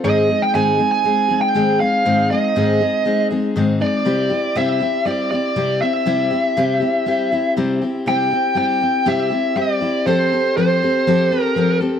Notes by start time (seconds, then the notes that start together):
0.04 G#2 D#3 G#3 C4 D#4 G#4 D#5
0.29 G#3 C4 D#4 G#4
0.42 G5
0.54 G#2 D#3 G#3 C4 D#4 G#4 G#5
0.78 G#3 C4 D#4 G#4
0.92 G#5
1.04 G#3 C4 D#4 G#4
1.29 G#3 C4 D#4 G#4
1.41 G5
1.55 G#2 D#3 G#3 C4 D#4 G#4
1.80 G#3 C4 D#4 G#4 F5
2.05 G#2 D#3 G#3 C4 D#4 G#4
2.30 G#3 C4 D#4 G#4 D#5
2.56 G#2 D#3 G#3 C4 D#4 G#4
2.81 G#3 C4 D#4 G#4
3.06 G#3 C4 D#4 G#4
3.31 G#3 C4 D#4 G#4
3.56 G#2 D#3 G#3 C4 D#4 G#4
3.80 G#3 C4 D#4 G#4 D5
4.05 C3 G3 C4 E4 G4
4.30 C4 E4 G4
4.56 C3 G3 C4 E4 G4 E5
4.80 C4 E4 G4
5.05 G3 C4 E4 G4 D5
5.31 C4 E4 G4 D5
5.56 C3 G3 C4 E4 G4
5.81 C4 E4 G4 E5
6.06 C3 G3 C4 E4 G4
6.31 C4 E4 G4
6.57 C3 G3 C4 E4 G4
6.80 C4 E4 G4
7.06 G3 C4 E4 G4
7.32 C4 E4 G4
7.57 C3 G3 C4 E4 G4
7.82 C4 E4 G4
8.06 C3 G3 C4 E4 G4 G5
8.31 C4 E4 G4
8.55 G3 C4 E4 G4 G5
8.81 C4 E4 G4
9.06 C3 G3 C4 E4 G4 E5
9.30 C4 E4 G4
9.56 G3 C4 E4 G4 D5
9.81 C4 E4 G4
10.06 F3 C4 G4 A4 C5
10.32 C4 G4 A4
10.57 F3 C4 G4 A4 C5
10.82 C4 G4 A4
11.07 F3 C4 G4 A4
11.31 C4 G4 A4
11.39 A#4
11.56 F3 C4 G4 A4
11.81 C4 G4 A4